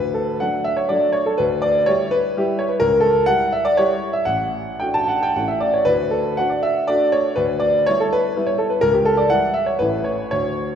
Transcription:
0.00 0.39 D2 medium
0.00 0.14 B4 loud
0.14 0.40 A4 medium
0.40 0.86 F#3 soft
0.40 0.86 A3 soft
0.40 0.86 D4 soft
0.40 0.66 F#5 medium
0.64 0.77 E5 loud
0.77 0.89 C#5 medium
0.89 1.34 F#3 medium
0.89 1.35 A3 medium
0.89 1.35 D4 medium
0.89 1.14 D5 medium
1.13 1.26 C#5 medium
1.26 1.38 A4 medium
1.38 1.87 D2 medium
1.38 1.63 B4 loud
1.62 1.87 D5 loud
1.86 2.32 G3 medium
1.86 2.33 E4 medium
1.86 2.33 G4 medium
1.86 2.12 C#5 loud
2.11 2.58 B4 loud
2.37 2.77 G3 medium
2.37 2.77 E4 medium
2.37 2.78 G4 medium
2.59 2.70 C#5 medium
2.69 2.80 B4 medium
2.80 3.25 C#2 medium
2.80 3.02 A#4 loud
3.00 3.26 A4 loud
3.26 3.73 G3 medium
3.26 3.73 E4 soft
3.26 3.73 G4 medium
3.26 3.52 F#5 loud
3.52 3.65 E5 medium
3.65 3.77 D5 loud
3.77 4.23 G3 medium
3.77 4.23 E4 medium
3.77 4.23 G4 medium
3.77 4.14 C#5 loud
4.13 4.26 E5 medium
4.25 4.79 A1 medium
4.25 4.80 F#5 loud
4.80 5.32 A3 soft
4.80 5.32 D4 soft
4.80 5.32 F#4 soft
4.80 4.94 G5 medium
4.94 5.08 A5 loud
5.08 5.22 F#5 medium
5.23 5.36 G5 medium
5.36 5.86 A1 medium
5.36 5.83 A3 soft
5.36 5.84 C#4 soft
5.36 5.84 E4 soft
5.36 5.49 F#5 medium
5.48 5.61 E5 medium
5.60 5.74 D5 medium
5.74 5.86 C#5 medium
5.85 6.35 D2 medium
5.85 6.11 B4 loud
6.10 6.37 A4 medium
6.37 6.86 A3 medium
6.37 6.86 D4 medium
6.37 6.86 F#4 medium
6.37 6.51 F#5 loud
6.50 6.63 D5 medium
6.63 6.89 E5 loud
6.88 7.33 A3 medium
6.88 7.33 D4 medium
6.88 7.33 F#4 medium
6.88 7.13 D5 loud
7.12 7.37 C#5 loud
7.36 7.86 D2 medium
7.36 7.61 B4 loud
7.60 7.87 D5 loud
7.86 8.32 G3 medium
7.86 8.33 B3 medium
7.86 8.33 E4 medium
7.86 8.00 C#5 loud
8.00 8.13 A4 medium
8.13 8.48 B4 loud
8.36 8.77 G3 medium
8.36 8.78 B3 medium
8.36 8.78 E4 medium
8.47 8.58 C#5 medium
8.58 8.70 A4 medium
8.70 8.81 B4 medium
8.81 9.28 C#2 medium
8.81 8.93 A#4 loud
8.93 9.05 G4 medium
9.05 9.17 A4 loud
9.17 9.30 D5 medium
9.30 9.76 E3 medium
9.30 9.76 G3 medium
9.30 9.76 E4 medium
9.30 9.55 F#5 loud
9.54 9.66 E5 medium
9.66 9.79 C#5 medium
9.79 10.30 A1 medium
9.79 10.27 E3 medium
9.79 10.27 A3 medium
9.79 10.28 E4 soft
9.79 10.05 B4 loud
10.04 10.30 C#5 medium
10.31 10.75 D2 medium
10.31 10.75 C#5 loud

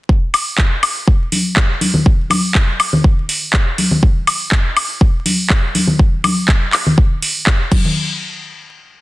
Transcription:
0.09 kick loud
0.34 open hi-hat loud
0.34 high woodblock medium
0.58 kick loud
0.58 clap loud
0.83 open hi-hat medium
0.83 high woodblock medium
1.08 kick loud
1.32 open hi-hat loud
1.32 high conga medium
1.56 kick loud
1.56 clap loud
1.81 open hi-hat medium
1.81 high conga medium
1.94 low conga medium
2.06 kick loud
2.30 open hi-hat loud
2.30 high conga medium
2.30 high woodblock medium
2.55 kick loud
2.55 clap loud
2.80 open hi-hat medium
2.80 high woodblock medium
2.93 low conga medium
3.04 kick loud
3.29 open hi-hat loud
3.53 kick loud
3.53 clap loud
3.78 open hi-hat medium
3.78 high conga medium
3.91 low conga medium
4.03 kick loud
4.27 open hi-hat loud
4.27 high woodblock medium
4.52 kick loud
4.52 clap loud
4.77 open hi-hat medium
4.77 high woodblock medium
5.01 kick loud
5.26 open hi-hat loud
5.26 high conga medium
5.50 kick loud
5.50 clap loud
5.75 open hi-hat loud
5.75 high conga medium
5.87 low conga medium
5.99 kick loud
6.24 open hi-hat loud
6.24 high conga medium
6.24 high woodblock medium
6.48 kick loud
6.48 clap loud
6.73 clap medium
6.73 open hi-hat medium
6.73 high woodblock medium
6.87 low conga medium
6.98 kick loud
7.22 open hi-hat loud
7.47 kick loud
7.47 clap loud
7.71 kick loud
7.71 crash medium
7.71 high conga medium
7.84 low conga medium

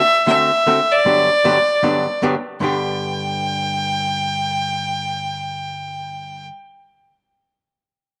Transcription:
0.00 0.25 E5 loud
0.27 0.50 D3 medium
0.27 0.50 A3 medium
0.27 0.50 C4 medium
0.27 0.50 F#4 medium
0.27 0.50 A4 medium
0.27 0.93 E5 loud
0.66 0.78 D3 medium
0.66 0.79 A3 medium
0.66 0.79 C4 medium
0.66 0.79 F#4 medium
0.66 0.79 A4 medium
0.92 2.21 D5 loud
1.05 1.28 G2 soft
1.05 1.28 D3 medium
1.05 1.28 F#3 medium
1.05 1.28 B3 medium
1.05 1.28 D4 medium
1.05 1.28 G4 medium
1.44 1.56 G2 medium
1.44 1.56 D3 medium
1.44 1.56 F#3 medium
1.44 1.56 B3 medium
1.44 1.56 D4 medium
1.44 1.57 G4 medium
1.83 2.05 G2 medium
1.83 2.05 D3 medium
1.83 2.06 F#3 medium
1.83 2.06 B3 medium
1.83 2.06 D4 medium
1.83 2.06 G4 medium
2.22 2.34 G2 medium
2.22 2.34 D3 medium
2.22 2.34 F#3 medium
2.22 2.34 B3 medium
2.22 2.34 D4 medium
2.22 2.35 G4 medium
2.60 6.49 G2 medium
2.60 6.50 D3 medium
2.60 6.51 B3 medium
2.60 6.52 D4 medium
2.60 6.53 G4 medium
2.60 6.45 G5 medium

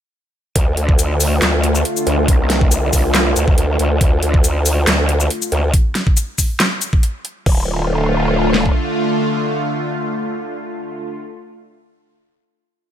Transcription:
0.56 0.76 D2 loud
0.56 5.70 D3 medium
0.56 5.70 A3 medium
0.56 5.70 F4 medium
0.56 kick loud
0.56 closed hi-hat medium
0.77 1.40 D2 medium
0.77 closed hi-hat medium
0.89 kick loud
0.99 closed hi-hat medium
0.99 shaker medium
1.20 open hi-hat medium
1.20 shaker medium
1.42 1.83 D2 medium
1.42 snare loud
1.42 clap medium
1.42 closed hi-hat medium
1.64 closed hi-hat medium
1.75 shaker medium
1.85 closed hi-hat medium
1.97 shaker medium
2.07 2.27 D2 loud
2.07 closed hi-hat medium
2.28 2.91 C2 loud
2.28 kick loud
2.28 closed hi-hat medium
2.50 snare medium
2.50 closed hi-hat medium
2.61 kick loud
2.71 closed hi-hat medium
2.71 shaker medium
2.93 3.35 C2 loud
2.93 kick medium
2.93 open hi-hat medium
2.93 shaker medium
3.15 snare loud
3.15 clap medium
3.15 closed hi-hat medium
3.36 3.56 D2 loud
3.36 closed hi-hat medium
3.36 shaker medium
3.48 kick loud
3.58 3.78 D2 loud
3.58 closed hi-hat medium
3.79 3.99 D2 loud
3.79 closed hi-hat medium
4.01 4.21 D2 loud
4.01 kick loud
4.01 closed hi-hat medium
4.22 4.86 D2 loud
4.22 closed hi-hat medium
4.34 kick loud
4.44 closed hi-hat medium
4.44 shaker medium
4.66 open hi-hat medium
4.66 shaker medium
4.87 5.29 D2 loud
4.87 snare loud
4.87 clap medium
4.87 closed hi-hat medium
5.09 closed hi-hat medium
5.20 shaker medium
5.30 closed hi-hat medium
5.42 shaker medium
5.52 5.72 D2 loud
5.52 closed hi-hat soft
5.74 kick loud
5.74 closed hi-hat medium
5.95 snare medium
5.95 closed hi-hat soft
6.07 kick loud
6.17 closed hi-hat medium
6.17 shaker medium
6.38 kick medium
6.38 open hi-hat medium
6.38 shaker medium
6.60 snare loud
6.60 clap medium
6.60 closed hi-hat medium
6.82 closed hi-hat medium
6.82 shaker medium
6.93 kick loud
7.03 closed hi-hat medium
7.25 closed hi-hat soft
7.46 8.72 D1 loud
7.46 11.17 D3 medium
7.46 11.17 A3 medium
7.46 11.17 F4 medium
7.46 kick loud
7.46 crash medium
8.54 snare medium
8.66 kick medium

